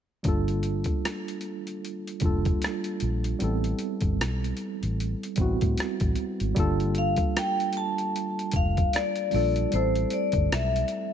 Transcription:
0.23 fingered electric bass G1, tine electric piano G3 A#3 D4 F4, kick, closed hi-hat
0.28 tine electric piano A4
0.48 closed hi-hat
0.63 closed hi-hat
0.84 kick, closed hi-hat
1.05 cross-stick, closed hi-hat
1.28 closed hi-hat
1.41 closed hi-hat
1.67 closed hi-hat
1.85 closed hi-hat
2.07 closed hi-hat
2.20 fingered electric bass F1, tine electric piano G3 A#3 D4, kick, closed hi-hat
2.24 tine electric piano F4 A4
2.45 kick, closed hi-hat
2.62 cross-stick, closed hi-hat
2.84 closed hi-hat
3.00 fingered electric bass A#1, closed hi-hat
3.24 closed hi-hat
3.39 fingered electric bass A1, tine electric piano G3 B3 C4 E4, closed hi-hat
3.44 tine electric piano A4
3.64 closed hi-hat
3.79 closed hi-hat
4.01 fingered electric bass G1, kick, closed hi-hat
4.21 fingered electric bass B1, cross-stick, closed hi-hat
4.44 closed hi-hat
4.57 closed hi-hat
4.83 fingered electric bass A1, closed hi-hat
5.00 closed hi-hat
5.23 closed hi-hat
5.36 fingered electric bass A1, tine electric piano G3 B3 C4, kick, closed hi-hat
5.40 tine electric piano E4 F#4
5.61 fingered electric bass A2, kick, closed hi-hat
5.78 muted fingered electric bass stroke, cross-stick, closed hi-hat
6.00 fingered electric bass A1, kick, closed hi-hat
6.16 closed hi-hat
6.40 fingered electric bass G#1, closed hi-hat
6.54 fingered electric bass G1, tine electric piano G3 A#3 D4 F4, kick, closed hi-hat
6.60 tine electric piano A4
6.80 closed hi-hat
6.95 vibraphone F5, closed hi-hat
7.16 kick, closed hi-hat
7.37 vibraphone G5, cross-stick, closed hi-hat
7.60 closed hi-hat
7.73 closed hi-hat
7.77 vibraphone A5
7.98 closed hi-hat
8.16 closed hi-hat
8.39 closed hi-hat
8.52 fingered electric bass F1, kick, closed hi-hat
8.56 vibraphone F5
8.77 kick, closed hi-hat
8.93 vibraphone D5, cross-stick, closed hi-hat
9.16 closed hi-hat
9.31 fingered electric bass A#1, tine electric piano G3 A#3 D4 F4, vibraphone D5, open hi-hat
9.36 tine electric piano A4
9.56 closed hi-hat
9.71 fingered electric bass A1, tine electric piano G3 A3 C4 E4, vibraphone C5, closed hi-hat
9.76 tine electric piano A4
9.95 closed hi-hat
10.10 vibraphone D5, closed hi-hat
10.32 fingered electric bass G1, kick, closed hi-hat
10.52 fingered electric bass B1, vibraphone E5, cross-stick, closed hi-hat
10.76 closed hi-hat
10.88 closed hi-hat

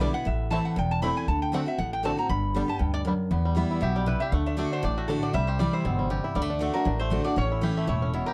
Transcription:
Already playing: steel-string acoustic guitar B2
0.00 steel-string acoustic guitar D3 G3 B3 E4, five-string banjo G3 B3 D4, resonator guitar played with a steel bar D5
0.13 steel-string acoustic guitar B3 E4, resonator guitar played with a steel bar F#5
0.25 upright bass A1, steel-string acoustic guitar A2, resonator guitar played with a steel bar E5
0.50 steel-string acoustic guitar E3 A3 C4 E4, five-string banjo A3 C4 E4, resonator guitar played with a steel bar A5
0.65 resonator guitar played with a steel bar F#5
0.76 upright bass E1, steel-string acoustic guitar E2, resonator guitar played with a steel bar G5
0.91 resonator guitar played with a steel bar A5
1.02 steel-string acoustic guitar E3 A3 C4 E4, five-string banjo A3 C4 E4, resonator guitar played with a steel bar B5
1.17 resonator guitar played with a steel bar G#5
1.28 upright bass D2, steel-string acoustic guitar D3, resonator guitar played with a steel bar A5
1.42 resonator guitar played with a steel bar G5
1.52 steel-string acoustic guitar D3 A3 C4 F#4, five-string banjo A3 C4 D4, resonator guitar played with a steel bar F#5
1.66 steel-string acoustic guitar C4 F#4, resonator guitar played with a steel bar E5
1.78 upright bass A1, steel-string acoustic guitar A2, resonator guitar played with a steel bar F#5
1.93 resonator guitar played with a steel bar G5
2.03 steel-string acoustic guitar D3 A3 C4 F#4, five-string banjo A3 C4 D4, resonator guitar played with a steel bar A5
2.17 steel-string acoustic guitar C4 F#4, resonator guitar played with a steel bar A#5
2.29 upright bass G1, steel-string acoustic guitar G2, resonator guitar played with a steel bar B5
2.54 steel-string acoustic guitar D3 G3 B3 G4, five-string banjo G3 B3 D4
2.68 steel-string acoustic guitar B3 G4, resonator guitar played with a steel bar A5
2.79 upright bass D2, steel-string acoustic guitar G2, resonator guitar played with a steel bar G5
2.94 resonator guitar played with a steel bar D5
3.05 steel-string acoustic guitar F#2, five-string banjo G3 B3 D4
3.31 steel-string acoustic guitar E2, upright bass E2, five-string banjo B3
3.45 five-string banjo G3
3.55 steel-string acoustic guitar E3 G3 B3 E4, five-string banjo B3
3.71 five-string banjo E4
3.81 upright bass B1, steel-string acoustic guitar B2, five-string banjo G4, resonator guitar played with a steel bar E5
3.96 five-string banjo G3, resonator guitar played with a steel bar G4
4.06 steel-string acoustic guitar C3, five-string banjo E4, resonator guitar played with a steel bar B4
4.20 five-string banjo G4, resonator guitar played with a steel bar E5
4.32 upright bass D2, steel-string acoustic guitar D3, five-string banjo A3, resonator guitar played with a steel bar F#5
4.46 five-string banjo D4, resonator guitar played with a steel bar E5
4.57 steel-string acoustic guitar D3 A3 D4 F#4, five-string banjo A3, resonator guitar played with a steel bar D5
4.73 five-string banjo D4, resonator guitar played with a steel bar C5
4.83 upright bass A1, steel-string acoustic guitar A2, five-string banjo D4, resonator guitar played with a steel bar D5
4.97 five-string banjo A3, resonator guitar played with a steel bar F#4
5.08 steel-string acoustic guitar D3 A3 D4 F#4, five-string banjo D4, resonator guitar played with a steel bar A4
5.23 five-string banjo D4, resonator guitar played with a steel bar D5
5.33 upright bass C2, steel-string acoustic guitar C3, five-string banjo G3, resonator guitar played with a steel bar E5
5.47 five-string banjo G4, resonator guitar played with a steel bar C5
5.59 steel-string acoustic guitar E3 G3 C4 E4, five-string banjo G3, resonator guitar played with a steel bar D5
5.73 five-string banjo E4, resonator guitar played with a steel bar C5
5.85 upright bass G1, steel-string acoustic guitar B2, five-string banjo C4
5.99 five-string banjo G3
6.10 steel-string acoustic guitar C3, five-string banjo G4
6.24 five-string banjo E4
6.35 upright bass D2, steel-string acoustic guitar D3, five-string banjo G3, resonator guitar played with a steel bar D5
6.42 five-string banjo A3
6.50 five-string banjo D4
6.59 steel-string acoustic guitar D3 A3 D4 F#4, five-string banjo A3
6.74 five-string banjo D4, steel-string acoustic guitar D4 F#4, resonator guitar played with a steel bar A#4
6.85 upright bass A1, steel-string acoustic guitar A2, five-string banjo D4
6.99 five-string banjo A3, resonator guitar played with a steel bar C5
7.10 steel-string acoustic guitar D3 A3 D4 F#4, five-string banjo D4
7.24 steel-string acoustic guitar D4 F#4, five-string banjo D4, resonator guitar played with a steel bar D5
7.36 upright bass A1, steel-string acoustic guitar A2, five-string banjo C#4, resonator guitar played with a steel bar C#5
7.52 five-string banjo E4
7.61 steel-string acoustic guitar E3 A3 C#4 E4, five-string banjo G4
7.77 five-string banjo A3
7.87 upright bass E1, steel-string acoustic guitar A2, five-string banjo E4, resonator guitar played with a steel bar C#5
8.02 five-string banjo C#4
8.14 steel-string acoustic guitar B2, five-string banjo E4
8.26 five-string banjo G4, resonator guitar played with a steel bar A#4

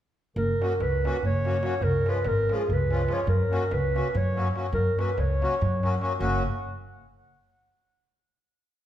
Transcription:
0.36 upright bass F#1, clarinet A#4, darbuka dum
0.49 darbuka tek
0.60 accordion F#3 A#3 C#4 F#4, darbuka tek
0.71 darbuka tek
0.80 upright bass C#2, clarinet B4, darbuka tek
0.93 darbuka tek
1.04 accordion F#3 A#3 C#4 F#4, darbuka tek
1.14 darbuka tek
1.23 upright bass F#1, clarinet C#5, darbuka dum
1.34 darbuka tek
1.45 accordion F#3 A#3 C#4 F#4, darbuka tek
1.62 accordion F#3 A#3 C#4 F#4, darbuka tek
1.72 darbuka tek
1.81 upright bass C#2, clarinet A#4, darbuka dum
1.94 darbuka tek
2.05 accordion F3 G#3 C#4 F4, darbuka tek
2.10 clarinet B4
2.15 darbuka tek
2.25 upright bass G#1, clarinet A#4, darbuka tek
2.38 darbuka tek
2.49 accordion F3 G#3 C#4 F4, darbuka tek
2.54 clarinet G#4
2.59 darbuka tek
2.68 upright bass C#2, darbuka dum
2.72 clarinet B4
2.80 darbuka tek
2.89 accordion F3 G#3 C#4 F4, darbuka tek
3.07 accordion F3 G#3 C#4 F4, darbuka tek
3.13 clarinet C#5
3.27 upright bass F#2, clarinet A#4, darbuka dum
3.40 darbuka tek
3.50 accordion F#3 A#3 C#4 F#4, darbuka tek
3.71 upright bass C#2, clarinet B4, darbuka tek
3.84 darbuka tek
3.94 accordion F#3 A#3 C#4 F#4, darbuka tek
4.06 darbuka tek
4.15 upright bass F#2, clarinet C#5, darbuka dum
4.27 darbuka tek
4.35 accordion F#3 A#3 C#4 F#4, darbuka tek
4.54 accordion F#3 A#3 C#4 F#4, darbuka tek
4.65 darbuka tek
4.72 upright bass F#2, clarinet A#4, darbuka dum
4.87 darbuka tek
4.97 accordion F#3 A#3 C#4 F#4, clarinet B4, darbuka tek
5.09 darbuka tek
5.17 upright bass C#2, clarinet C#5, darbuka tek
5.41 accordion F#3 A#3 C#4 F#4, darbuka tek
5.61 upright bass F#2, darbuka dum
5.72 darbuka tek
5.82 accordion F#3 A#3 C#4 F#4, darbuka tek
5.92 darbuka tek
6.00 accordion F#3 A#3 C#4 F#4, darbuka tek
6.19 upright bass F#1, accordion F#3 A#3 C#4 F#4, clarinet F#5, darbuka dum

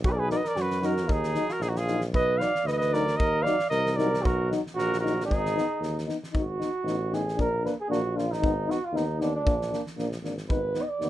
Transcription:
0.04 tuba B1, flugelhorn F#4, trumpet B4, kick
0.10 flugelhorn A#4, trumpet D5
0.16 flugelhorn G#4, trumpet B4
0.30 euphonium F#3 D#4, flugelhorn A#4, trumpet D5, snare
0.36 flugelhorn B4, trumpet D#5
0.44 flugelhorn A#4, trumpet D5, snare
0.56 tuba F#2, flugelhorn F#4, snare
0.61 trumpet B4
0.71 snare
0.80 euphonium F#3 D#4, flugelhorn F#4, snare
0.85 trumpet A#4
0.97 snare
1.07 tuba D#2, flugelhorn D#4, kick
1.12 trumpet G#4
1.23 snare
1.34 euphonium F#3 D#4, snare
1.49 flugelhorn F#4, trumpet A#4, snare
1.60 tuba A#1, flugelhorn D#4, trumpet G#4, snare
1.69 flugelhorn D#4, trumpet F#4
1.76 flugelhorn F4, trumpet G#4, snare
1.87 euphonium F#3 D#4, snare
2.01 snare
2.12 tuba B1, flugelhorn B4, trumpet D#5, kick
2.38 euphonium F#3 D#4, flugelhorn D5, trumpet F5, snare
2.55 snare
2.65 tuba D2, flugelhorn B4, trumpet D#5, snare
2.72 flugelhorn B4, trumpet D#5
2.78 flugelhorn B4, trumpet D#5, snare
2.93 euphonium F#3 D#4, flugelhorn A#4, trumpet D5, snare
3.08 snare
3.17 tuba D#2, flugelhorn A#4, trumpet D#5, kick
3.42 euphonium F#3 D#4, flugelhorn D5, trumpet F5, snare
3.59 snare
3.69 tuba C2, flugelhorn A#4, trumpet D#5, snare
3.86 snare
3.97 euphonium F#3 D#4, flugelhorn A#4, trumpet D5, snare
4.14 snare
4.22 tuba B1, flugelhorn F#4, trumpet A#4, kick
4.50 euphonium F#3 D#4, snare
4.66 snare
4.75 tuba A#1, flugelhorn F#4, trumpet A#4, snare
4.93 snare
5.00 euphonium F#3 D#4, flugelhorn F#4, trumpet A#4
5.06 snare
5.20 snare
5.25 tuba G#1, flugelhorn D#4, trumpet G#4
5.31 kick
5.46 snare
5.55 euphonium B3 D#4, snare
5.80 tuba D#2, snare
5.98 snare
6.07 euphonium B3 D#4, snare
6.23 snare
6.32 tuba G#1, euphonium B3 D#4, kick
6.37 flugelhorn F#4
6.59 euphonium B3 D#4, snare
6.84 tuba A1, euphonium B3 D#4, snare
7.11 euphonium B3 D#4, flugelhorn G#4, snare
7.28 snare
7.37 tuba A#1, euphonium A#3 D4, flugelhorn A#4, kick
7.63 euphonium A#3 D4, flugelhorn B4, snare
7.81 flugelhorn G#4
7.89 tuba A#1, euphonium A#3 D4, flugelhorn F#4, snare
8.14 euphonium A#3 D4, flugelhorn F4
8.19 snare
8.32 flugelhorn D#4, snare
8.40 tuba G#1, euphonium B3 D#4, kick
8.66 euphonium B3 D#4, flugelhorn F#4
8.71 snare
8.85 flugelhorn F4
8.92 tuba D#2, euphonium B3 D#4, flugelhorn D#4
8.97 snare
9.19 euphonium B3 D#4, flugelhorn D4, snare
9.35 flugelhorn D4
9.43 tuba A#1, euphonium A#3 D4, kick
9.62 snare
9.70 euphonium A#3 D4, snare
9.87 snare
9.97 tuba A#1, euphonium A#3 D4, snare
10.12 snare
10.22 tuba G#1, euphonium A#3 D4, snare
10.38 snare
10.47 tuba G#1, euphonium B3 D#4, flugelhorn B4, kick
10.74 euphonium B3 D#4, snare
10.81 flugelhorn D#5
10.89 flugelhorn D5
11.00 tuba D#2, euphonium B3 D#4, snare

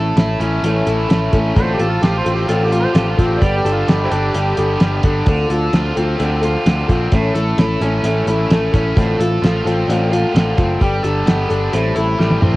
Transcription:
Already playing: picked electric bass A1, overdriven electric guitar A2, steel-string acoustic guitar A3 C#4 E4 A4
0.16 picked electric bass A1, steel-string acoustic guitar A3 C#4 E4 A4, snare, closed hi-hat
0.40 picked electric bass A1, steel-string acoustic guitar A3 C#4 E4 A4, closed hi-hat
0.63 picked electric bass A1, steel-string acoustic guitar A2 E3 A3 C#4 E4 A4, closed hi-hat
0.86 picked electric bass A1, steel-string acoustic guitar A3 C#4 E4 A4, closed hi-hat
1.08 picked electric bass A1, steel-string acoustic guitar A3 C#4 E4 A4, snare, closed hi-hat
1.32 picked electric bass A1, steel-string acoustic guitar A3 C#4 E4 A4, kick, closed hi-hat
1.56 picked electric bass A1, steel-string acoustic guitar A2 D3 A3 C4 F4 A4, harmonica C5, kick, closed hi-hat
1.74 harmonica G4
1.79 picked electric bass A1, steel-string acoustic guitar A3 C4 F4 A4, closed hi-hat
1.88 harmonica F4
2.01 picked electric bass A1, steel-string acoustic guitar A3 C4 F4 A4, harmonica G4, snare, closed hi-hat
2.18 harmonica C5
2.24 picked electric bass A1, steel-string acoustic guitar A3 C4 F4 A4, closed hi-hat
2.34 harmonica G4
2.48 picked electric bass A1, steel-string acoustic guitar A2 D3 A3 C4 F4 A4, harmonica F4, closed hi-hat
2.64 harmonica G4
2.70 steel-string acoustic guitar A3 C4 F4 A4, closed hi-hat
2.80 harmonica C5
2.93 picked electric bass A1, overdriven electric guitar D3, steel-string acoustic guitar A3 C4 F4 A4, harmonica G4, snare, closed hi-hat
3.10 harmonica F4
3.17 picked electric bass A1, steel-string acoustic guitar A3 C4 F4 A4, kick, closed hi-hat
3.26 harmonica G4
3.40 picked electric bass G1, steel-string acoustic guitar G3 B3 D4 G4 A4, harmonica D5, kick, closed hi-hat
3.57 harmonica G4
3.64 picked electric bass G1, steel-string acoustic guitar D4 G4 A4, closed hi-hat
3.72 harmonica F4
3.87 picked electric bass G1, steel-string acoustic guitar B3 D4 G4 A4, harmonica G4, snare, closed hi-hat
4.04 harmonica C4 E4 G4
4.11 picked electric bass G1, steel-string acoustic guitar D4 G4 A4, closed hi-hat
4.34 picked electric bass G1, steel-string acoustic guitar G3 B3 D4 G4 A4, closed hi-hat
4.57 picked electric bass G1, overdriven electric guitar B3, steel-string acoustic guitar D4 G4 A4, closed hi-hat
4.80 picked electric bass G1, overdriven electric guitar G3, steel-string acoustic guitar B3 D4 G4 A4, snare, closed hi-hat
5.03 picked electric bass G1, steel-string acoustic guitar D4 G4 A4, kick, closed hi-hat
5.26 picked electric bass D2, steel-string acoustic guitar D3 A3 C4 F4 A4, kick, closed hi-hat
5.49 picked electric bass D2, steel-string acoustic guitar C4 F4 A4, closed hi-hat
5.72 picked electric bass D2, steel-string acoustic guitar A3 C4 F4 A4, snare, closed hi-hat
5.96 picked electric bass D2, steel-string acoustic guitar C4 F4 A4, closed hi-hat
6.18 picked electric bass D2, steel-string acoustic guitar D3 A3 C4 F4 A4, closed hi-hat
6.42 steel-string acoustic guitar C4 F4 A4, closed hi-hat
6.65 picked electric bass D2, overdriven electric guitar D3, steel-string acoustic guitar A3 C4 F4 A4, snare, closed hi-hat
6.88 picked electric bass A#1, steel-string acoustic guitar C4 F4 A4, kick, closed hi-hat
7.12 picked electric bass A1, steel-string acoustic guitar A2 E3 A3 C#4 E4 A4, kick, closed hi-hat
7.35 picked electric bass A1, steel-string acoustic guitar A3 C#4 E4 A4, closed hi-hat
7.57 picked electric bass A1, steel-string acoustic guitar A3 C#4 E4 A4, snare, closed hi-hat
7.81 picked electric bass A1, steel-string acoustic guitar A3 C#4 E4 A4, closed hi-hat
8.04 picked electric bass A1, steel-string acoustic guitar A2 E3 A3 C#4 E4 A4, closed hi-hat
8.27 picked electric bass A1, steel-string acoustic guitar C#4 E4 A4, closed hi-hat
8.31 steel-string acoustic guitar A3
8.50 picked electric bass A1, steel-string acoustic guitar A3 C#4 E4 A4, snare, closed hi-hat
8.72 picked electric bass A1, steel-string acoustic guitar A3 C#4 E4 A4, kick, closed hi-hat
8.97 picked electric bass A1, steel-string acoustic guitar A2 D3 A3 C4 F4 A4, kick, closed hi-hat
9.19 picked electric bass A1, steel-string acoustic guitar A3 C4 F4 A4, closed hi-hat
9.42 picked electric bass A1, steel-string acoustic guitar A3 C4 F4 A4, snare, closed hi-hat
9.65 picked electric bass A1, steel-string acoustic guitar A3 C4 F4 A4, closed hi-hat
9.88 picked electric bass A1, steel-string acoustic guitar A2 D3 A3 C4 F4 A4, closed hi-hat
10.12 steel-string acoustic guitar A3 C4 F4 A4, closed hi-hat
10.32 picked electric bass A1, overdriven electric guitar D3, steel-string acoustic guitar A3 C4 F4 A4, closed hi-hat
10.37 snare
10.57 picked electric bass F#1, steel-string acoustic guitar A3 C4 F4 A4, kick, closed hi-hat
10.81 picked electric bass G1, steel-string acoustic guitar G3 B3 D4 G4 A4, kick, closed hi-hat
11.03 picked electric bass G1, steel-string acoustic guitar D4 G4 A4, closed hi-hat
11.25 picked electric bass G1, steel-string acoustic guitar B3 D4 G4 A4, snare, closed hi-hat
11.49 picked electric bass G1, steel-string acoustic guitar D4 G4 A4, closed hi-hat
11.72 picked electric bass A1, steel-string acoustic guitar A2 E3 G3 C4 E4 A4, closed hi-hat
11.96 picked electric bass A1, steel-string acoustic guitar G3 C4 E4 A4, closed hi-hat
12.18 picked electric bass A1, steel-string acoustic guitar G3 C4 E4 A4, snare
12.31 high tom
12.41 picked electric bass A1, steel-string acoustic guitar G3 C4 E4 A4, mid tom

